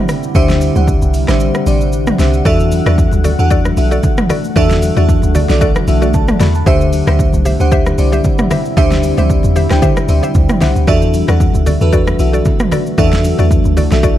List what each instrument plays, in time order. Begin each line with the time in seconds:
Already playing: ambient pad C3 G3 E4, fm electric piano D3 D4 G4 C5 E5 F#5
0.09 cross-stick, open hi-hat, shaker
0.23 shaker
0.35 log drum bass D2, fm electric piano D3 D4 G4 C5 E5, ambient pad F#5, kick, shaker
0.49 snare, shaker
0.61 open hi-hat, shaker
0.76 log drum bass D2, fm electric piano D3 D4 G4 C5 F#5, mid tom, shaker
0.87 kick, shaker
1.02 log drum bass C2, shaker
1.14 open hi-hat, shaker
1.28 log drum bass A1, fm electric piano D3 D4 G4 C5 E5, cross-stick, snare, shaker
1.40 shaker
1.54 cross-stick, shaker
1.66 log drum bass A1, fm electric piano D3 D4 G4 C5 D5, open hi-hat, shaker
1.81 shaker
1.92 shaker
2.07 cross-stick, mid tom, shaker
2.19 log drum bass C2, fm electric piano D3 D4 G4 C5 E5, snare, open hi-hat, shaker
2.34 shaker
2.45 log drum bass E2, ambient pad D3 A3, fm electric piano E3 D4 F#4 A4 E5, synth pluck F#4 A4 D5, kick, low conga, shaker
2.60 shaker
2.72 open hi-hat, high conga, shaker
2.86 log drum bass E2, fm electric piano E3 D4 F#4 A4 E5, synth pluck F#4 A4 D5, cross-stick, high conga, shaker
2.98 kick, shaker
3.11 log drum bass D2, high conga, shaker
3.24 synth pluck F#4 A4 D5, open hi-hat, low conga, shaker
3.39 log drum bass E2, fm electric piano E3 D4 F#4 A4 F#5, shaker
3.50 synth pluck F#4 A4 D5, kick, shaker
3.65 cross-stick, high conga, shaker
3.77 log drum bass B1, fm electric piano E3 D4 F#4 A4 E5, open hi-hat, shaker
3.91 synth pluck F#4 A4 D5, high conga, shaker
4.03 kick, low conga, shaker
4.18 cross-stick, mid tom, shaker
4.29 synth pluck F#4 A4 D5, cross-stick, open hi-hat, high conga, low conga, shaker
4.44 shaker
4.56 log drum bass E2, fm electric piano E3 D4 F#4 A4 E5, synth pluck F#4 A4 D5, kick, low conga, shaker
4.70 snare, shaker
4.82 open hi-hat, high conga, shaker
4.96 log drum bass E2, fm electric piano E3 D4 F#4 G#4 E5, synth pluck F#4 A4 D5, high conga, shaker
5.04 fm electric piano A4
5.09 kick, shaker
5.22 log drum bass D2, high conga, shaker
5.35 synth pluck F#4 A4 D5, open hi-hat, low conga, shaker
5.49 log drum bass B1, fm electric piano E3 D4 F#4 A4 D5, snare, shaker
5.61 synth pluck F#4 A4 D5, kick, shaker
5.76 cross-stick, high conga, shaker
5.88 log drum bass B1, fm electric piano E3 D4 F#4 A4 E5, open hi-hat, shaker
6.02 synth pluck F#4 A4 D5, high conga, shaker
6.14 fm electric piano A5, kick, low conga, shaker
6.28 cross-stick, mid tom, shaker
6.40 log drum bass E2, synth pluck F#4 A4 D5, fm electric piano B5, snare, open hi-hat, high conga, low conga, shaker
6.55 fm electric piano A5, shaker
6.66 log drum bass D2, ambient pad C3 G3 E4, fm electric piano D3 D4 G4 C5 E5, synth pluck G4 C5 E5, kick, low conga, shaker
6.81 shaker
6.93 open hi-hat, high conga, shaker
7.07 log drum bass D2, fm electric piano D3 D4 G4 C5 E5, synth pluck G4 C5 E5, cross-stick, high conga, shaker
7.19 kick, shaker
7.33 log drum bass C2, high conga, shaker
7.45 synth pluck G4 C5 E5, open hi-hat, low conga, shaker
7.60 log drum bass D2, fm electric piano D3 D4 G4 C5 F#5, shaker
7.72 synth pluck G4 C5 E5, kick, shaker
7.86 cross-stick, high conga, shaker
7.98 log drum bass C2, fm electric piano D3 D4 G4 C5 D5, open hi-hat, shaker
8.12 synth pluck G4 C5 E5, high conga, shaker
8.24 kick, low conga, shaker
8.39 cross-stick, mid tom, shaker
8.51 synth pluck G4 C5 E5, cross-stick, open hi-hat, high conga, low conga, shaker
8.65 shaker
8.77 log drum bass D2, fm electric piano D3 D4 G4 C5 E5, synth pluck G4 C5 E5, kick, low conga, shaker
8.92 snare, shaker
9.03 open hi-hat, high conga, shaker
9.18 log drum bass D2, fm electric piano D3 D4 G4 C5 D5, synth pluck G4 C5 E5, mid tom, high conga, shaker
9.30 kick, shaker
9.43 log drum bass E2, high conga, shaker
9.56 synth pluck G4 C5 E5, open hi-hat, low conga, shaker
9.70 log drum bass D2, fm electric piano D3 D4 G4 C5 G5, cross-stick, snare, shaker
9.82 log drum bass D3, synth pluck G4 C5 E5, kick, shaker
9.97 cross-stick, high conga, shaker
10.09 log drum bass D2, fm electric piano D3 D4 G4 C5 E5, open hi-hat, shaker
10.23 synth pluck G4 C5 E5, high conga, shaker
10.35 log drum bass D2, kick, low conga, shaker
10.49 cross-stick, mid tom, shaker
10.61 log drum bass C2, fm electric piano D3 D4 G4 C5 F#5, synth pluck G4 C5 E5, snare, open hi-hat, high conga, low conga, shaker
10.76 log drum bass D2, shaker
10.87 log drum bass E2, ambient pad D3 A3 F#4, fm electric piano E3 D4 F#4 A4 E5, synth pluck F#4 A4 D5, kick, low conga, shaker
11.02 shaker
11.14 open hi-hat, high conga, shaker
11.28 log drum bass E2, fm electric piano E3 D4 F#4 A4 F#5, synth pluck F#4 A4 D5, cross-stick, high conga, shaker
11.40 kick, shaker
11.54 log drum bass D2, high conga, shaker
11.66 synth pluck F#4 A4 D5, open hi-hat, low conga, shaker
11.81 log drum bass E2, fm electric piano E3 D4 F#4 A4 B4, shaker
11.93 synth pluck F#4 A4 D5, kick, shaker
12.07 cross-stick, high conga, shaker
12.19 log drum bass B1, fm electric piano E3 D4 F#4 A4 E5, open hi-hat, shaker
12.33 synth pluck F#4 A4 D5, high conga, shaker
12.45 kick, low conga, shaker
12.60 cross-stick, mid tom, shaker
12.71 synth pluck F#4 A4 D5, cross-stick, open hi-hat, high conga, low conga, shaker
12.86 shaker
12.98 log drum bass E2, fm electric piano E3 D4 F#4 A4 E5, ambient pad E4, synth pluck F#4 A4 D5, kick, low conga, shaker
13.13 snare, shaker
13.24 open hi-hat, high conga, shaker
13.39 log drum bass E2, fm electric piano E3 D4 F#4 A4 E5, synth pluck F#4 A4 D5, high conga, shaker
13.51 kick, shaker
13.64 log drum bass D2, high conga, shaker
13.77 synth pluck F#4 A4 D5, open hi-hat, low conga, shaker
13.91 log drum bass B1, fm electric piano E3 D4 F#4 A4 E5, snare, shaker
14.03 synth pluck F#4 A4 D5, kick, shaker